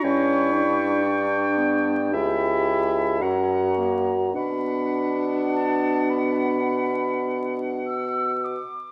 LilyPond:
<<
  \new Staff \with { instrumentName = "Flute" } { \time 4/4 \key b \minor \tempo 4 = 53 cis'''2 b''4 ais''4 | b''4 a''8 b''4. e'''8 d'''8 | }
  \new Staff \with { instrumentName = "Oboe" } { \time 4/4 \key b \minor g''2 e''4 fis''8 r8 | fis''2.~ fis''8 r8 | }
  \new Staff \with { instrumentName = "French horn" } { \time 4/4 \key b \minor cis'8 d'4. g'4 fis'4 | d'2. r4 | }
  \new Staff \with { instrumentName = "Clarinet" } { \time 4/4 \key b \minor e'4 d'8 b8 e'4 cis'8 ais8 | b2.~ b8 r8 | }
  \new Staff \with { instrumentName = "Bassoon" } { \clef bass \time 4/4 \key b \minor g,2 cis,4 fis,4 | b,2.~ b,8 r8 | }
>>